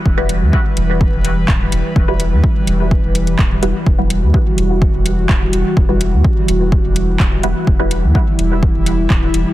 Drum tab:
HH |--x---x---x---x-|--x---x---xx--x-|--x---x---x---x-|--x---x---x---x-|
CP |------------x---|------------x---|------------x---|------------x---|
BD |o---o---o---o---|o---o---o---o---|o---o---o---o---|o---o---o---o---|

HH |--x---x---x---x-|
CP |------------x---|
BD |o---o---o---o---|